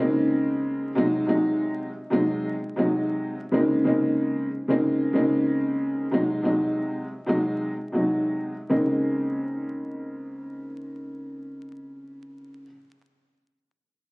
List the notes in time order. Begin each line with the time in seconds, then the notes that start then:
Already playing: C#3 G#3
0.00 A#3 C4 D#4
0.95 C3 F#3 G#3 D#4
1.26 C3 F#3 G#3 D#4
2.10 C3 F#3 G#3 D#4
2.76 C3 F#3 G#3 D#4
3.51 C#3 G#3 A#3 C4 D#4
3.84 C#3 G#3 A#3 C4 D#4
4.68 C#3 G#3 A#3 C4 D#4
5.13 C#3 G#3 A#3 C4 D#4
6.11 C3 F#3 G#3 D#4
6.43 C3 F#3 G#3 D#4
7.27 C3 F#3 G#3 D#4
7.92 C3 F#3 G#3 D#4
8.69 C#3 G#3 A#3 C4 D#4